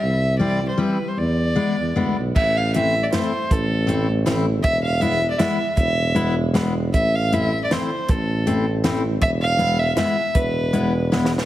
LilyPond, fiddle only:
\new Staff \with { instrumentName = "Fiddle" } { \time 3/4 \key e \phrygian \tempo 4 = 157 e''4 d''8. c''16 b'8. c''16 | d''2~ d''8 r8 | \key a \minor e''8 f''8 e''8. d''16 c''4 | a'4. r4. |
e''8 f''8 e''8. d''16 e''4 | e''4. r4. | e''8 f''8 e''8. d''16 c''4 | a'4. r4. |
e''8 f''4 e''8 e''4 | b'2 r4 | }